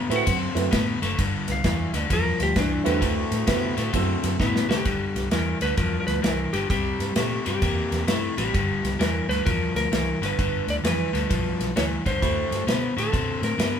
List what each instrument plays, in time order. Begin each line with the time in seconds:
Already playing: electric slide guitar A#5
0.09 fingered electric bass A2, overdriven electric guitar D3 A3, grand piano A3 C4 E4 F#4 B4, snare, ride
0.16 electric slide guitar F#5
0.26 fingered electric bass F#2, overdriven electric guitar D3 C4, kick, snare, ride
0.55 fingered electric bass F#2, grand piano A3 C4 E4 F#4 B4, snare, ride
0.71 fingered electric bass A2, overdriven electric guitar D3 B3, kick, snare, ride
1.02 fingered electric bass F#1, overdriven electric guitar D3 A3, snare, ride
1.18 fingered electric bass G1, overdriven electric guitar G2 D3, kick, snare, ride
1.48 fingered electric bass C2, snare, ride
1.52 electric slide guitar F5
1.64 fingered electric bass E2, overdriven electric guitar G2 E3, kick, snare, ride
1.93 fingered electric bass D2, overdriven electric guitar G2 D3, snare, ride
1.97 electric slide guitar D5
2.10 fingered electric bass E2, overdriven electric guitar G2 F3, electric slide guitar A#4, kick, snare, ride
2.39 fingered electric bass D2, electric slide guitar G4, snare, ride
2.56 fingered electric bass C2, overdriven electric guitar G2 E3, electric slide guitar D4, kick, snare, ride
2.84 fingered electric bass E2, overdriven electric guitar G2 D3, grand piano A3 C4 E4 F#4 B4, snare, ride
3.01 fingered electric bass D2, overdriven electric guitar D3 A3, kick, snare, ride
3.31 fingered electric bass A2, snare, ride
3.47 fingered electric bass C3, overdriven electric guitar D3 B3, grand piano A3 C4 E4 F#4 B4, kick, snare, ride
3.77 fingered electric bass A2, overdriven electric guitar D3 A3, snare, ride
3.93 fingered electric bass F#2, overdriven electric guitar D3 C4, grand piano A3 C4 E4 F#4 A4, kick, snare, ride
4.23 fingered electric bass F#2, snare, ride
4.40 fingered electric bass A2, overdriven electric guitar D3 B3, electric slide guitar E4, kick, snare
4.56 snare
4.69 fingered electric bass C3, overdriven electric guitar D3 A3, electric slide guitar G4, snare
4.85 fingered electric bass G1, overdriven electric guitar G2 D3, kick, snare, ride
5.15 fingered electric bass C2, snare, ride
5.31 fingered electric bass E2, overdriven electric guitar G2 E3, electric slide guitar A#4, snare, ride
5.61 fingered electric bass D2, overdriven electric guitar G2 D3, electric slide guitar B4, snare, ride
5.77 fingered electric bass E2, overdriven electric guitar G2 F3, electric slide guitar A#4, kick, snare, ride
6.00 electric slide guitar A#4
6.07 fingered electric bass D2, electric slide guitar B4, snare, ride
6.22 fingered electric bass C2, overdriven electric guitar G2 E3, electric slide guitar A#4, snare, ride
6.53 fingered electric bass G1, overdriven electric guitar G2 D3, electric slide guitar G4, snare, ride
6.70 fingered electric bass C2, overdriven electric guitar C3 G3, electric slide guitar G4, kick, snare, ride
6.99 fingered electric bass G2, snare, ride
7.16 fingered electric bass A#2, overdriven electric guitar C3 A3, snare, ride
7.45 fingered electric bass G2, overdriven electric guitar C3 G3, electric slide guitar G4, snare, ride
7.62 fingered electric bass E2, overdriven electric guitar C3 A#3, kick, snare, ride
7.91 fingered electric bass E2, snare, ride
8.07 fingered electric bass G2, overdriven electric guitar C3 A3, electric slide guitar E4, snare, ride
8.37 fingered electric bass A1, overdriven electric guitar C3 G3, electric slide guitar G4, snare, ride
8.53 fingered electric bass G1, overdriven electric guitar G2 D3, kick, snare, ride
8.83 fingered electric bass C2, snare, ride
8.99 fingered electric bass E2, overdriven electric guitar G2 E3, electric slide guitar A#4, snare, ride
9.28 fingered electric bass D2, overdriven electric guitar G2 D3, electric slide guitar B4, snare, ride
9.45 fingered electric bass E2, overdriven electric guitar G2 F3, electric slide guitar A#4, kick, snare, ride
9.74 fingered electric bass D2, electric slide guitar A#4, snare, ride
9.92 fingered electric bass C2, overdriven electric guitar G2 E3, electric slide guitar A#4, snare, ride
10.21 fingered electric bass G1, overdriven electric guitar G2 D3, snare, ride
10.26 electric slide guitar B4
10.38 fingered electric bass G1, overdriven electric guitar G2 D3, kick, snare, ride
10.67 fingered electric bass D2, electric slide guitar D5, snare, ride
10.83 fingered electric bass F2, overdriven electric guitar G2 E3, electric slide guitar B4, snare, ride
11.13 fingered electric bass D2, overdriven electric guitar G2 D3, snare, ride
11.29 fingered electric bass B1, overdriven electric guitar G2 F3, kick, snare, ride
11.60 fingered electric bass B1, snare, ride
11.76 fingered electric bass D2, overdriven electric guitar G2 E3, electric slide guitar C#5, snare, ride
12.06 fingered electric bass C2, overdriven electric guitar G2 D3, electric slide guitar C5, kick, snare, ride
12.21 fingered electric bass D2, overdriven electric guitar D3 A3, grand piano A3 C4 E4 F#4 B5, kick, snare, ride
12.51 fingered electric bass G2, snare, ride
12.66 fingered electric bass B2, overdriven electric guitar D3 B3, snare, ride
12.96 fingered electric bass A2, overdriven electric guitar D3 A3, electric slide guitar A4, snare, ride
13.12 fingered electric bass B2, overdriven electric guitar D3 C4, kick, snare, ride
13.42 fingered electric bass A2, electric slide guitar A#4, snare, ride
13.58 fingered electric bass G2, overdriven electric guitar D3 B3, snare, ride